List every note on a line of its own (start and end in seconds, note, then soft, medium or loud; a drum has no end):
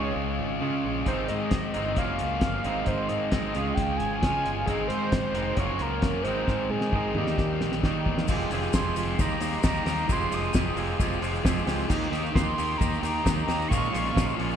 0.00 0.15 C#2 medium
0.00 0.59 C#3 loud
0.00 0.60 G#3 medium
0.00 0.61 C#4 loud
0.00 0.61 F4 loud
0.00 0.61 G#4 medium
0.00 0.14 C#5 loud
0.16 0.38 C#2 medium
0.39 0.60 G#1 medium
0.60 1.05 C#3 medium
0.60 0.83 C#3 medium
0.60 1.05 G#3 medium
0.60 1.06 C#4 medium
0.60 1.06 F4 medium
0.60 1.06 G#4 medium
0.84 1.06 A#1 medium
1.06 1.28 G#1 medium
1.06 1.72 G#2 medium
1.06 1.73 D#3 medium
1.06 1.73 G#3 medium
1.06 1.74 C4 medium
1.06 1.73 D#4 medium
1.06 1.73 A#4 medium
1.06 1.28 C5 medium
1.06 kick medium
1.06 closed hi-hat medium
1.28 1.51 G#2 medium
1.28 1.99 D#5 medium
1.28 closed hi-hat medium
1.51 1.73 G#1 medium
1.51 kick loud
1.51 snare loud
1.51 closed hi-hat medium
1.74 1.97 G1 medium
1.74 1.95 G#2 medium
1.74 1.96 D#3 medium
1.74 1.96 G#3 medium
1.74 1.96 C4 medium
1.74 1.95 D#4 medium
1.74 1.95 A#4 medium
1.74 closed hi-hat medium
1.96 2.18 F#1 medium
1.96 2.62 F#2 medium
1.96 2.63 C#3 medium
1.96 2.63 F#3 medium
1.96 2.64 A#3 medium
1.96 2.64 C#4 medium
1.96 2.64 F4 medium
1.96 2.64 A#4 medium
1.96 2.20 F5 loud
1.96 kick loud
1.96 closed hi-hat medium
2.19 2.41 C#2 medium
2.19 2.88 F5 loud
2.19 closed hi-hat medium
2.41 2.63 G1 loud
2.41 kick loud
2.41 snare loud
2.41 closed hi-hat medium
2.64 2.86 G#1 loud
2.64 3.30 G#2 medium
2.64 3.31 D#3 medium
2.64 3.31 G#3 medium
2.64 3.32 C4 medium
2.64 3.32 A#4 loud
2.64 closed hi-hat medium
2.68 3.32 D#4 loud
2.86 3.08 G#1 medium
2.86 3.10 C5 medium
2.86 kick loud
2.86 closed hi-hat medium
3.08 3.31 G#2 medium
3.08 3.76 D#5 loud
3.08 closed hi-hat medium
3.31 3.54 G#1 medium
3.31 3.52 G#2 medium
3.31 3.53 D#3 medium
3.31 3.53 G#3 medium
3.31 3.54 C4 medium
3.31 kick loud
3.31 snare loud
3.31 closed hi-hat medium
3.35 3.54 D#4 medium
3.35 3.54 A#4 medium
3.53 3.76 C#2 medium
3.53 4.20 C#3 loud
3.53 4.21 G#3 loud
3.53 4.21 C#4 loud
3.53 4.22 F4 loud
3.53 closed hi-hat medium
3.57 4.22 G#4 medium
3.74 3.98 C#2 medium
3.74 3.99 G5 loud
3.74 kick loud
3.74 closed hi-hat medium
3.97 4.21 G#1 medium
3.97 4.65 G#5 loud
3.97 closed hi-hat medium
4.21 4.65 C#3 medium
4.21 4.44 C#3 medium
4.21 4.66 G#3 medium
4.21 4.66 C#4 medium
4.21 4.67 F4 medium
4.21 4.67 G#4 medium
4.21 kick loud
4.21 snare medium
4.21 closed hi-hat medium
4.45 4.66 G1 medium
4.45 closed hi-hat medium
4.66 4.89 G#1 medium
4.66 5.33 G#2 medium
4.66 5.33 D#3 medium
4.66 5.34 G#3 medium
4.66 5.34 C4 loud
4.66 4.87 G#4 medium
4.66 5.34 A#4 loud
4.66 kick medium
4.66 closed hi-hat medium
4.70 5.33 D#4 loud
4.88 5.11 G#2 medium
4.88 5.58 C5 loud
4.88 closed hi-hat medium
5.12 5.34 G#1 medium
5.12 kick loud
5.12 snare loud
5.12 closed hi-hat medium
5.34 5.56 F1 medium
5.34 5.57 G#2 medium
5.34 5.57 D#3 medium
5.34 5.57 G#3 medium
5.34 5.56 C4 medium
5.34 5.56 D#4 medium
5.34 5.59 A#4 medium
5.34 closed hi-hat medium
5.56 5.79 F#1 medium
5.56 6.24 F#2 loud
5.56 6.24 C#3 medium
5.56 6.25 F#3 loud
5.56 6.25 A#3 medium
5.56 6.25 F4 medium
5.56 6.25 A#4 medium
5.56 5.83 C#5 loud
5.56 kick loud
5.56 closed hi-hat medium
5.61 6.26 C#4 medium
5.79 6.01 C#2 medium
5.79 6.24 A#4 loud
5.79 closed hi-hat medium
6.02 6.23 F#2 medium
6.02 kick loud
6.02 snare loud
6.02 closed hi-hat medium
6.23 6.46 G#1 medium
6.23 6.91 G#2 medium
6.23 6.92 D#3 medium
6.23 6.72 C5 loud
6.23 closed hi-hat medium
6.27 6.93 G#3 loud
6.27 6.93 C4 loud
6.27 6.94 D#4 loud
6.27 6.93 A#4 loud
6.48 6.69 G#1 medium
6.48 kick loud
6.48 snare medium
6.70 6.92 G#2 medium
6.70 6.92 G#4 medium
6.70 high tom medium
6.81 snare medium
6.92 7.16 G#1 medium
6.92 7.14 G#2 medium
6.92 7.13 D#3 medium
6.92 7.15 G#3 medium
6.92 7.15 C4 medium
6.92 7.19 G#4 medium
6.92 7.15 A#4 medium
6.92 kick loud
6.92 mid tom medium
6.96 7.16 D#4 medium
7.14 7.37 D#2 medium
7.14 7.82 D#3 medium
7.14 7.82 G3 loud
7.14 7.83 A#3 loud
7.14 7.84 D#4 loud
7.14 8.07 G4 medium
7.14 7.83 A#4 medium
7.14 mid tom medium
7.27 snare medium
7.38 7.60 D#2 medium
7.38 kick loud
7.38 snare medium
7.61 7.82 A#1 medium
7.61 snare medium
7.72 snare medium
7.83 8.27 D#3 medium
7.83 8.05 D#3 medium
7.83 8.28 G3 medium
7.83 8.28 A#3 medium
7.83 8.29 D#4 medium
7.83 8.29 A#4 medium
7.83 kick loud
7.83 snare medium
8.06 8.28 E2 medium
8.06 kick medium
8.18 snare medium
8.28 8.45 F1 medium
8.28 8.49 F3 loud
8.28 8.51 G#3 loud
8.28 8.49 C4 loud
8.28 8.50 F4 loud
8.28 8.53 G4 loud
8.28 8.51 G#4 loud
8.28 kick loud
8.28 crash loud
8.28 shaker medium
8.41 shaker soft
8.50 8.66 F1 medium
8.50 8.72 F3 medium
8.50 8.75 G#3 medium
8.50 8.73 C4 medium
8.50 8.73 F4 medium
8.50 8.76 G4 loud
8.50 8.74 G#4 medium
8.50 open hi-hat medium
8.50 shaker medium
8.63 shaker soft
8.73 8.90 F1 medium
8.73 8.95 F3 medium
8.73 8.96 G#3 loud
8.73 8.95 C4 loud
8.73 8.96 F4 medium
8.73 8.98 G4 loud
8.73 8.97 G#4 loud
8.73 8.96 C6 medium
8.73 kick loud
8.73 snare loud
8.73 shaker loud
8.96 9.12 F1 medium
8.96 9.18 F3 loud
8.96 9.18 G#3 medium
8.96 9.18 C4 loud
8.96 9.18 F4 loud
8.96 9.20 G4 medium
8.96 9.18 G#4 loud
8.96 9.22 C6 medium
8.96 open hi-hat medium
8.96 shaker medium
9.18 9.35 D#2 loud
9.18 9.39 D#3 loud
9.18 9.40 G3 loud
9.18 9.40 A#3 loud
9.18 9.41 D#4 loud
9.18 9.42 G4 loud
9.18 9.65 A#5 loud
9.18 kick loud
9.18 shaker loud
9.31 shaker soft
9.40 9.57 D#2 medium
9.40 9.61 D#3 medium
9.40 9.63 G3 medium
9.40 9.63 A#3 medium
9.40 9.64 D#4 medium
9.40 9.65 G4 medium
9.40 open hi-hat medium
9.40 shaker medium
9.53 shaker soft
9.63 9.80 D#2 loud
9.63 9.85 D#3 medium
9.63 9.86 G3 loud
9.63 9.86 A#3 medium
9.63 9.86 D#4 medium
9.63 9.87 G4 medium
9.63 kick loud
9.63 snare loud
9.63 shaker loud
9.68 9.87 A#5 medium
9.75 shaker soft
9.86 10.02 D#2 loud
9.86 10.08 D#3 medium
9.86 10.09 G3 medium
9.86 10.08 A#3 medium
9.86 10.08 D#4 medium
9.86 10.11 G4 loud
9.86 10.10 A#5 medium
9.86 snare medium
9.86 open hi-hat medium
9.86 shaker medium
9.98 shaker soft
10.09 10.25 F1 medium
10.09 10.30 F3 loud
10.09 10.31 G#3 medium
10.09 10.31 C4 loud
10.09 10.32 F4 loud
10.09 10.32 G4 loud
10.09 10.32 G#4 loud
10.09 10.36 C6 medium
10.09 kick loud
10.09 shaker loud
10.31 10.48 F1 medium
10.31 10.53 F3 medium
10.31 10.53 G#3 loud
10.31 10.54 C4 medium
10.31 10.54 F4 loud
10.31 10.56 G4 loud
10.31 10.55 G#4 medium
10.31 10.78 D#6 loud
10.31 open hi-hat medium
10.31 shaker medium
10.43 shaker soft
10.54 10.71 F1 medium
10.54 10.75 F3 loud
10.54 10.76 G#3 loud
10.54 10.75 C4 loud
10.54 10.76 F4 loud
10.54 10.78 G4 loud
10.54 10.77 G#4 loud
10.54 kick loud
10.54 snare loud
10.54 shaker loud
10.76 10.93 F1 medium
10.76 10.98 F3 loud
10.76 10.98 G#3 medium
10.76 10.99 C4 loud
10.76 10.99 F4 loud
10.76 10.99 G4 medium
10.76 11.00 G#4 loud
10.76 open hi-hat medium
10.76 shaker medium
10.99 11.16 F1 medium
10.99 11.21 F3 loud
10.99 11.21 G#3 medium
10.99 11.21 C4 loud
10.99 11.22 F4 loud
10.99 11.22 G4 loud
10.99 11.22 G#4 loud
10.99 kick loud
10.99 shaker loud
11.13 shaker soft
11.22 11.38 F1 medium
11.22 11.43 F3 medium
11.22 11.43 G#3 medium
11.22 11.44 C4 medium
11.22 11.44 F4 medium
11.22 11.43 G4 medium
11.22 11.45 G#4 medium
11.22 open hi-hat medium
11.22 shaker medium
11.35 shaker soft
11.44 11.61 F1 loud
11.44 11.65 F3 loud
11.44 11.65 G#3 loud
11.44 11.66 C4 medium
11.44 11.67 F4 loud
11.44 11.66 G4 loud
11.44 11.67 G#4 medium
11.44 kick loud
11.44 snare loud
11.44 shaker medium
11.58 shaker soft
11.66 11.83 C#2 medium
11.66 11.88 F3 medium
11.66 11.88 G#3 loud
11.66 11.89 C4 medium
11.66 11.89 F4 medium
11.66 11.89 G4 loud
11.66 11.89 G#4 medium
11.66 snare medium
11.66 open hi-hat medium
11.66 shaker medium
11.80 shaker soft
11.90 12.06 D#2 loud
11.90 12.10 D#3 loud
11.90 12.12 A#3 loud
11.90 12.12 D#4 loud
11.90 12.12 G4 loud
11.90 kick loud
11.90 crash loud
11.90 shaker medium
12.03 shaker soft
12.12 12.28 D#2 medium
12.12 12.34 D#3 medium
12.12 12.35 A#3 medium
12.12 12.35 D#4 medium
12.12 12.36 G4 loud
12.12 open hi-hat medium
12.12 shaker medium
12.26 shaker soft
12.35 12.51 D#2 loud
12.35 12.57 D#3 medium
12.35 12.58 A#3 loud
12.35 12.58 D#4 loud
12.35 12.59 G4 loud
12.35 12.79 C6 loud
12.35 kick loud
12.35 snare loud
12.35 shaker loud
12.58 12.74 D#2 medium
12.58 12.79 D#3 medium
12.58 12.80 A#3 loud
12.58 12.81 D#4 loud
12.58 12.81 G4 loud
12.58 open hi-hat medium
12.58 shaker medium
12.78 12.97 D#2 medium
12.78 13.02 D#3 loud
12.78 13.03 A#3 loud
12.78 13.43 A#5 medium
12.78 kick loud
12.78 shaker loud
12.82 13.03 D#4 loud
12.82 13.03 G4 loud
12.94 shaker soft
13.03 13.19 D#2 medium
13.03 13.24 D#3 medium
13.03 13.24 A#3 medium
13.03 13.25 D#4 medium
13.03 13.26 G4 medium
13.03 open hi-hat loud
13.03 shaker medium
13.25 13.42 D#2 loud
13.25 13.46 D#3 medium
13.25 13.47 A#3 loud
13.25 13.47 D#4 medium
13.25 13.49 G4 loud
13.25 kick loud
13.25 snare loud
13.25 shaker loud
13.39 shaker soft
13.44 13.69 D#3 loud
13.44 13.70 A#5 loud
13.48 13.64 D#2 loud
13.48 13.70 A#3 medium
13.48 13.70 D#4 medium
13.48 13.71 G4 medium
13.48 snare medium
13.48 open hi-hat medium
13.48 shaker medium
13.62 shaker soft
13.68 13.87 A#1 loud
13.68 13.92 A#2 loud
13.68 13.93 F3 loud
13.68 13.91 G#3 loud
13.68 13.94 A#3 loud
13.68 13.94 C#4 loud
13.68 13.89 C#6 loud
13.68 kick loud
13.72 13.95 F4 loud
13.72 shaker loud
13.85 shaker soft
13.90 14.14 A#2 medium
13.90 14.14 G#3 loud
13.90 14.34 C#6 loud
13.94 14.10 A#1 medium
13.94 14.15 F3 medium
13.94 14.16 A#3 medium
13.94 14.16 C#4 loud
13.94 14.16 F4 medium
13.94 open hi-hat medium
13.94 shaker medium
14.07 shaker soft
14.15 14.32 A#1 medium
14.15 14.37 A#2 loud
14.15 14.38 F3 loud
14.15 14.37 G#3 loud
14.15 14.39 A#3 loud
14.15 14.39 C#4 loud
14.15 14.40 F4 loud
14.15 kick loud
14.15 snare loud
14.15 shaker loud
14.30 shaker soft
14.38 14.55 A#1 medium
14.38 14.56 A#2 loud
14.38 14.56 F3 medium
14.38 14.56 G#3 medium
14.38 14.56 A#3 loud
14.38 14.56 C#4 loud
14.38 14.56 F4 loud
14.38 open hi-hat medium
14.51 shaker soft